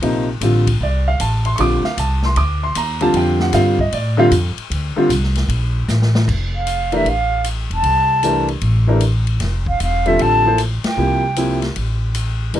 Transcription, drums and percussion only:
0.02 ride medium
0.41 hi-hat pedal medium
0.41 ride medium
0.67 kick soft
0.67 ride medium
1.20 hi-hat pedal medium
1.20 ride medium
1.45 ride soft
1.58 ride medium
1.84 snare soft
1.98 hi-hat pedal medium
1.98 ride medium
2.23 snare soft
2.36 ride medium
2.75 hi-hat pedal medium
2.75 ride medium
3.01 ride soft
3.14 ride medium
3.40 snare soft
3.53 snare soft
3.53 hi-hat pedal medium
3.53 ride medium
3.79 kick medium
3.92 ride medium
4.31 hi-hat pedal medium
4.31 ride medium
4.58 ride soft
4.71 ride medium
5.10 hi-hat pedal medium
5.10 ride medium
5.23 snare soft
5.35 snare soft
5.35 ride medium
5.49 ride medium
5.88 snare medium
5.88 hi-hat pedal medium
6.02 snare medium
6.15 snare loud
6.28 kick medium
6.28 crash medium
6.67 hi-hat pedal medium
6.67 ride medium
6.92 ride soft
7.06 ride soft
7.44 hi-hat pedal medium
7.44 ride medium
7.71 ride soft
7.84 ride medium
8.23 hi-hat pedal medium
8.23 ride medium
8.48 ride soft
8.61 ride medium
9.00 hi-hat pedal medium
9.00 ride medium
9.27 ride soft
9.40 snare soft
9.40 ride medium
9.66 kick medium
9.80 hi-hat pedal medium
9.80 ride medium
10.06 ride soft
10.19 ride medium
10.58 hi-hat pedal medium
10.58 ride medium
10.84 snare medium
10.84 ride medium
11.36 hi-hat pedal soft
11.36 ride medium
11.62 snare soft
11.62 ride soft
11.76 ride medium
12.14 hi-hat pedal medium
12.14 ride medium
12.54 ride medium

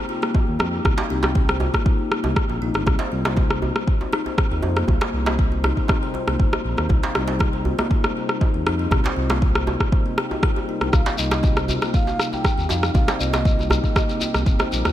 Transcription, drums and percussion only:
0.23 cross-stick medium
0.35 kick loud
0.35 djembe tone medium
0.59 cross-stick medium
0.59 djembe tone medium
0.85 kick loud
0.85 cross-stick medium
0.85 djembe bass medium
0.98 djembe slap loud
0.98 djembe tone medium
1.23 cross-stick medium
1.23 djembe slap medium
1.23 djembe tone medium
1.35 kick loud
1.49 cross-stick medium
1.60 djembe tone medium
1.60 djembe bass medium
1.74 kick medium
1.74 cross-stick medium
1.86 kick loud
1.86 djembe tone medium
2.12 cross-stick medium
2.24 djembe tone medium
2.36 kick loud
2.36 cross-stick medium
2.50 djembe tone medium
2.75 cross-stick medium
2.86 kick loud
2.86 cross-stick medium
2.86 djembe bass medium
2.99 djembe slap medium
2.99 djembe tone medium
3.25 cross-stick medium
3.25 djembe slap medium
3.36 kick loud
3.36 djembe tone medium
3.51 cross-stick medium
3.62 djembe tone medium
3.62 djembe bass medium
3.76 cross-stick medium
3.87 kick loud
4.01 djembe tone medium
4.13 cross-stick medium
4.26 djembe tone medium
4.38 kick loud
4.38 cross-stick medium
4.62 djembe tone medium
4.77 cross-stick medium
4.88 kick loud
4.88 djembe tone medium
4.88 djembe bass medium
5.01 cross-stick medium
5.01 djembe slap medium
5.26 cross-stick medium
5.26 djembe slap medium
5.26 djembe tone medium
5.39 kick loud
5.52 djembe tone medium
5.64 cross-stick medium
5.64 djembe bass medium
5.77 kick medium
5.88 kick loud
5.88 cross-stick medium
5.88 djembe tone medium
6.14 djembe tone medium
6.28 cross-stick medium
6.40 kick loud
6.53 cross-stick medium
6.53 djembe tone medium
6.77 cross-stick medium
6.77 djembe tone medium
6.89 kick loud
6.89 djembe bass medium
7.03 djembe slap medium
7.15 cross-stick medium
7.15 djembe tone medium
7.28 djembe slap medium
7.39 kick loud
7.39 cross-stick medium
7.39 djembe tone medium
7.65 djembe bass medium
7.79 cross-stick medium
7.79 djembe tone medium
7.91 kick loud
8.04 cross-stick medium
8.04 djembe tone medium
8.29 cross-stick medium
8.41 kick loud
8.41 djembe tone medium
8.67 cross-stick medium
8.67 djembe tone medium
8.91 kick loud
8.91 cross-stick medium
8.91 djembe bass loud
9.04 djembe slap loud
9.04 djembe tone medium
9.30 cross-stick medium
9.30 djembe slap medium
9.30 djembe tone medium
9.42 kick loud
9.55 cross-stick medium
9.67 djembe tone medium
9.67 djembe bass medium
9.80 kick medium
9.80 cross-stick medium
9.92 kick loud
9.92 djembe tone medium
10.18 cross-stick medium
10.31 djembe tone medium
10.43 kick loud
10.43 cross-stick medium
10.57 djembe tone medium
10.81 cross-stick medium
10.93 kick loud
10.93 cross-stick medium
10.93 djembe bass medium
10.93 shekere soft
11.06 djembe slap loud
11.06 djembe tone medium
11.06 shekere soft
11.18 shekere medium
11.31 cross-stick medium
11.31 djembe slap medium
11.31 shekere soft
11.43 kick loud
11.43 djembe tone medium
11.43 shekere soft
11.56 cross-stick medium
11.56 shekere soft
11.69 djembe tone medium
11.69 djembe bass medium
11.69 shekere medium
11.81 cross-stick medium
11.81 shekere soft
11.94 kick loud
11.94 shekere soft
12.07 djembe tone medium
12.07 shekere soft
12.20 cross-stick medium
12.20 shekere medium
12.33 djembe tone medium
12.33 shekere soft
12.44 kick loud
12.44 cross-stick medium
12.44 shekere medium
12.59 shekere soft
12.69 djembe tone medium
12.69 shekere medium
12.83 cross-stick medium
12.83 shekere soft
12.94 kick loud
12.94 djembe tone medium
12.94 djembe bass medium
12.94 shekere medium
13.08 cross-stick medium
13.08 djembe slap loud
13.08 shekere soft
13.20 shekere loud
13.33 cross-stick medium
13.33 djembe slap medium
13.33 djembe tone medium
13.33 shekere soft
13.45 kick loud
13.45 shekere soft
13.59 djembe tone medium
13.59 shekere soft
13.70 cross-stick medium
13.70 djembe bass medium
13.70 shekere medium
13.84 kick medium
13.84 shekere soft
13.96 kick loud
13.96 cross-stick medium
13.96 djembe tone medium
13.96 shekere medium
14.09 shekere soft
14.21 djembe tone medium
14.21 shekere loud
14.34 cross-stick medium
14.34 shekere soft
14.46 kick loud
14.46 shekere medium
14.59 cross-stick medium
14.59 djembe tone medium
14.59 shekere soft
14.72 shekere medium
14.85 cross-stick medium
14.85 djembe tone medium
14.85 shekere soft

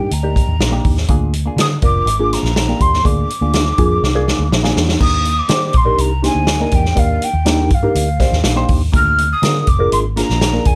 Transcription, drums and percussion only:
0.11 closed hi-hat medium
0.36 kick medium
0.36 closed hi-hat medium
0.61 snare loud
0.61 closed hi-hat medium
0.84 kick medium
0.84 open hi-hat soft
0.97 snare soft
1.08 kick loud
1.08 closed hi-hat medium
1.33 closed hi-hat medium
1.58 snare loud
1.58 closed hi-hat medium
1.82 kick medium
1.82 closed hi-hat medium
2.07 closed hi-hat medium
2.33 snare soft
2.33 closed hi-hat medium
2.45 snare soft
2.56 snare loud
2.56 closed hi-hat medium
2.80 kick medium
2.80 closed hi-hat medium
2.94 snare soft
3.05 kick loud
3.05 closed hi-hat medium
3.30 closed hi-hat medium
3.53 snare loud
3.53 closed hi-hat medium
3.78 kick loud
3.78 closed hi-hat medium
4.04 snare medium
4.28 snare medium
4.52 snare medium
4.65 snare medium
4.77 snare loud
4.89 snare medium
5.01 kick loud
5.01 crash loud
5.25 closed hi-hat medium
5.49 snare loud
5.49 closed hi-hat medium
5.73 kick loud
5.73 closed hi-hat medium
5.98 closed hi-hat medium
6.24 snare soft
6.24 closed hi-hat medium
6.47 snare loud
6.47 closed hi-hat medium
6.71 kick loud
6.71 closed hi-hat medium
6.85 snare soft
6.97 kick loud
6.97 closed hi-hat medium
7.22 closed hi-hat medium
7.46 snare loud
7.46 closed hi-hat medium
7.70 kick medium
7.70 closed hi-hat medium
7.95 closed hi-hat medium
8.20 kick medium
8.20 snare soft
8.20 closed hi-hat medium
8.33 snare soft
8.44 snare loud
8.44 closed hi-hat medium
8.68 kick medium
8.68 open hi-hat medium
8.94 kick loud
8.94 closed hi-hat medium
9.18 closed hi-hat medium
9.43 snare loud
9.43 closed hi-hat medium
9.67 kick medium
9.67 closed hi-hat medium
9.92 closed hi-hat medium
10.17 snare soft
10.17 closed hi-hat medium
10.30 snare soft
10.41 snare loud
10.41 closed hi-hat medium
10.65 kick medium
10.65 closed hi-hat medium

